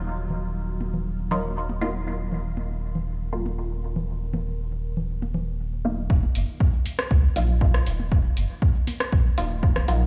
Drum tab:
HH |----------------|----------------|----------------|--o---o---o---o-|
SD |----------------|----------------|----------------|-------r-----r--|
T1 |------o------o--|----o------o----|--o------o------|-o------o------o|
CG |--O----O--O-----|--O----O-------O|--O----O--O-----|----------------|
BD |----------------|----------------|----------------|o---o---o---o---|

HH |--o---o---o---o-|
SD |-------r-----r--|
T1 |------o------o--|
CG |-------------O--|
BD |o---o---o---o---|